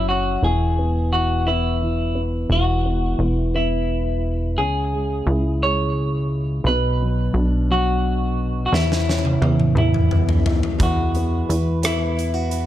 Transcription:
Already playing: analog synth bass F#1, upright piano F#3 C#4
0.09 upright piano C#4, clean electric guitar F#4
0.42 analog synth bass E1, upright piano E3, clean electric guitar G#4
0.79 upright piano B3
1.13 upright piano E3, clean electric guitar F#4
1.47 upright piano B3, clean electric guitar E4
1.82 upright piano E3
2.15 upright piano B3
2.49 analog synth bass E1, upright piano E3, clean electric guitar F#4
2.85 upright piano B3
3.19 analog synth bass E1, upright piano E3
3.26 clean electric guitar E4
3.55 upright piano B3, clean electric guitar E4
4.57 analog synth bass C#2, upright piano C#3, clean electric guitar G#4
4.93 upright piano G#3
5.26 analog synth bass C#2, upright piano E4
5.63 upright piano G#3, clean electric guitar C#5
6.64 analog synth bass B1, upright piano B2, clean electric guitar B4
7.01 upright piano F#3
7.34 analog synth bass B1, upright piano D4
7.70 upright piano F#3, clean electric guitar F#4
8.66 clean electric guitar F#4
8.72 analog synth bass E2, upright piano E3, clean electric guitar E4, snare
8.92 snare
9.08 upright piano C#4, snare
9.25 high tom
9.42 analog synth bass E2, upright piano E3, high tom
9.60 mid tom
9.75 analog synth bass E2, upright piano E3, clean electric guitar E4, mid tom
9.94 mid tom
10.11 upright piano B3, mid tom
10.29 floor tom
10.46 upright piano E3, floor tom
10.63 floor tom
10.78 analog synth bass E2, upright piano E3, steel-string acoustic guitar G#3 B4, kick, closed hi-hat
10.83 clean electric guitar F#4
11.14 steel-string acoustic guitar B3, upright piano B3, closed hi-hat
11.49 analog synth bass E2, upright piano E3, steel-string acoustic guitar B4, closed hi-hat
11.82 steel-string acoustic guitar B3, upright piano B3, clean electric guitar E4, cross-stick, closed hi-hat
12.17 steel-string acoustic guitar E4, closed hi-hat
12.34 steel-string acoustic guitar F#4
12.51 steel-string acoustic guitar B4, closed hi-hat

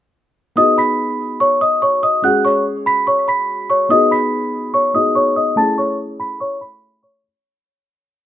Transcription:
0.56 felt piano B3 D#4 F#4 G#4, celesta D#5 D#6
0.78 celesta B5 B6
1.40 celesta C#5 C#6
1.61 celesta D#5 D#6
1.82 celesta C#5 C#6
2.03 celesta D#5 D#6
2.22 felt piano G#3 C#4 F#4 G#4, celesta F#5 F#6
2.45 celesta C#5 C#6
2.86 celesta B5 B6
3.07 celesta C#5 C#6
3.28 celesta B5 B6
3.70 celesta C#5 C#6
3.89 felt piano B3 D#4 F#4 G#4, celesta D#5 D#6
4.11 celesta B5 B6
4.74 celesta C#5 C#6
4.94 felt piano B3 D#4 F#4 G#4, celesta D#5 D#6
5.15 celesta C#5 C#6
5.36 celesta D#5 D#6
5.56 felt piano A3 C#4 E4 G#4, celesta A5 A6
5.78 celesta C#5 C#6
6.20 celesta B5 B6
6.40 celesta C#5 C#6
6.61 celesta B5 B6
7.03 celesta C#5 C#6

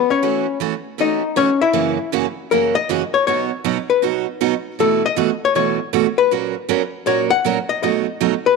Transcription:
Already playing: hollow-body jazz guitar B3 B4
0.10 hollow-body jazz guitar C#4 C#5
0.23 steel-string acoustic guitar E3 A3 C#4 F#4
0.60 steel-string acoustic guitar E3 A3 C#4 F#4
0.98 steel-string acoustic guitar E3 A3 C#4 F#4, hollow-body jazz guitar D#4 D#5
1.36 steel-string acoustic guitar E3 A3 C#4 F#4, hollow-body jazz guitar C#4 C#5
1.61 hollow-body jazz guitar E4 E5
1.73 steel-string acoustic guitar F#2 C#3 E3 A#3 C#4 F#4
2.12 steel-string acoustic guitar F#2 C#3 E3 A#3 C#4 F#4
2.51 steel-string acoustic guitar F#2 C#3 E3 A#3 C#4 F#4, hollow-body jazz guitar A#4
2.75 hollow-body jazz guitar D#5
2.89 steel-string acoustic guitar F#2 C#3 E3 A#3 C#4 F#4
3.14 hollow-body jazz guitar C#5
3.27 steel-string acoustic guitar B2 F#3 B3 D#4 F#4, hollow-body jazz guitar C#5
3.64 steel-string acoustic guitar B2 F#3 B3 D#4 F#4
3.90 hollow-body jazz guitar B4
4.02 steel-string acoustic guitar B2 F#3 B3 D#4 F#4
4.41 steel-string acoustic guitar B2 F#3 B3 D#4 F#4
4.79 steel-string acoustic guitar B2 E3 A3 E4 F#4, hollow-body jazz guitar A4
5.06 hollow-body jazz guitar D#5
5.16 steel-string acoustic guitar B2 E3 A3 E4 F#4
5.45 hollow-body jazz guitar C#5
5.55 steel-string acoustic guitar B2 E3 A3 E4 F#4, hollow-body jazz guitar C#5
5.93 steel-string acoustic guitar B2 E3 A3 E4 F#4
6.18 hollow-body jazz guitar B4
6.31 steel-string acoustic guitar A#2 F#3 A#3 C#4 F#4 A#4
6.69 steel-string acoustic guitar A#2 F#3 A#3 C#4 F#4 A#4
7.06 steel-string acoustic guitar A#2 F#3 A#3 C#4 F#4 A#4, hollow-body jazz guitar C#5
7.30 hollow-body jazz guitar F#5
7.44 steel-string acoustic guitar A#2 F#3 A#3 C#4 F#4 A#4
7.69 hollow-body jazz guitar D#5
7.83 steel-string acoustic guitar B2 F#3 A3 D#4 F#4, hollow-body jazz guitar D#5
8.21 steel-string acoustic guitar B2 F#3 A3 D#4 F#4
8.46 hollow-body jazz guitar B4

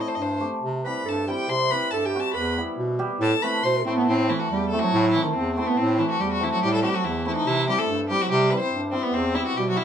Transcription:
0.01 violin D#5
0.08 violin C5
0.15 bass clarinet G2, violin D#5
0.22 violin C5
0.40 hammered dulcimer A3 C4 G4
0.62 bass clarinet C3
0.83 hammered dulcimer G3 C4 E4, clarinet B4, violin B5
1.05 bass clarinet G2, clarinet A4, violin A5
1.27 hammered dulcimer G3 C4 E4, clarinet G4, violin G5
1.48 bass clarinet C3, clarinet C5, violin C6
1.71 hammered dulcimer G3 C4 E4, clarinet B4, violin B5
1.91 bass clarinet G2, clarinet A4, violin A5
2.05 clarinet G4, violin G5
2.15 hammered dulcimer G3 C4 F#4
2.20 violin A5
2.34 bass clarinet E2, clarinet B4, violin B5
2.57 hammered dulcimer G3 B3 E4
2.78 bass clarinet B2
2.99 hammered dulcimer G3 B3 G4
3.20 bass clarinet A2, clarinet A4, violin A5
3.42 hammered dulcimer A3 C4 E4, clarinet B4, violin B5
3.64 bass clarinet B2, clarinet C5, violin C6
3.85 bass clarinet A2, hammered dulcimer A3 C4 E4, clarinet C4, violin C4
3.96 clarinet B3, violin B3
4.06 bass clarinet A2, violin C4, clarinet C4
4.28 clarinet E3, hammered dulcimer A3 C4 E4, violin E4
4.39 violin F#4
4.48 bass clarinet E2, clarinet G3, violin G4
4.69 hammered dulcimer A3, violin A4
4.73 clarinet A3, hammered dulcimer C4 E4
4.79 clarinet F#3, violin F#4
4.93 bass clarinet A2
5.11 hammered dulcimer A3 C4 E4, violin E4
5.15 clarinet E3
5.23 clarinet D#3, violin D#4
5.34 bass clarinet E2, violin C4, clarinet C4
5.55 hammered dulcimer A3 C4 E4, violin C4, clarinet C4
5.67 violin B3, clarinet B3
5.77 bass clarinet A2, violin C4, clarinet C4
5.99 clarinet E3, hammered dulcimer A3 C4 E4, violin E4
6.11 violin F#4
6.20 bass clarinet E2, clarinet G3, violin G4
6.32 violin F#4
6.40 clarinet E3, hammered dulcimer A3 C4 E4, violin E4
6.52 clarinet F#3, violin F#4
6.63 bass clarinet A2, clarinet G3, violin G4
6.73 violin A4
6.83 clarinet G3, hammered dulcimer A3 C4 F#4, violin G4
6.94 clarinet F#3, violin F#4
7.05 bass clarinet E2, clarinet E3, violin E4
7.25 clarinet E3, hammered dulcimer A3 C4 E4, violin E4
7.36 violin D#4
7.46 bass clarinet C3, clarinet E3, violin E4
7.68 hammered dulcimer G3 C4 E4, clarinet G3, violin G4
7.79 clarinet A3, violin A4
7.88 bass clarinet G2
8.10 hammered dulcimer G3 C4 E4, clarinet G3, violin G4
8.19 clarinet F#3 G3, violin F#4
8.30 bass clarinet C3, clarinet G3, violin G4
8.51 hammered dulcimer G3 C4 E4, violin B4
8.60 clarinet C4, violin C5
8.72 bass clarinet G2
8.92 hammered dulcimer G3 C4 E4, violin C4, clarinet C4
9.03 violin B3, clarinet B3
9.13 bass clarinet E2, violin C4
9.17 clarinet C4
9.34 hammered dulcimer G3 B3 E4, violin E4
9.46 violin F#4
9.55 bass clarinet B2, clarinet G3, violin G4
9.68 clarinet F#3, violin F#4
9.76 hammered dulcimer G3 B3 F#4, violin E4

